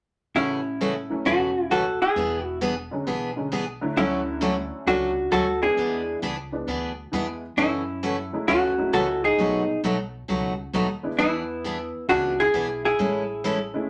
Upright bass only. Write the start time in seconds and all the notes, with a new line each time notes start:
0.35 A1
1.26 E1
2.16 E1
3.07 B1
3.97 D2
4.87 C#2
5.32 D2
5.77 E2
6.22 C#2
6.67 D2
7.12 E2
7.57 F#2
8.48 D2
8.93 C#2
9.38 B1
9.83 B1
10.29 C#2
10.73 D#2
11.19 E2
12.09 C#2
12.54 B1
12.99 A1